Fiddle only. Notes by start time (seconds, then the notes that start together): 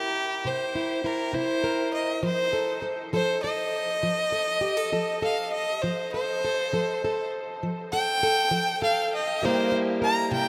Already playing: G4
0.47 C5
1.06 A#4
1.35 C5
1.94 D#5
2.25 C5
3.14 C5
3.43 D#5
5.25 F5
5.53 D#5
5.82 C5
6.13 C5
7.92 G5
8.84 F5
9.15 D#5
9.45 C5
10.04 A#5
10.33 G5